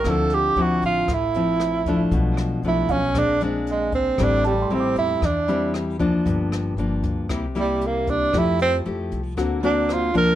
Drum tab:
HH |xxxxxxxx|xxxxxxxx|xxxxxxxx|xxxxxxxx|
SD |r---r-r-|-r--r---|r---r-r-|-r--r---|
BD |o---o--o|o--oo--o|o---o--o|o--oo--o|

HH |xxxxxxxx|
SD |r---r-r-|
BD |o---o--o|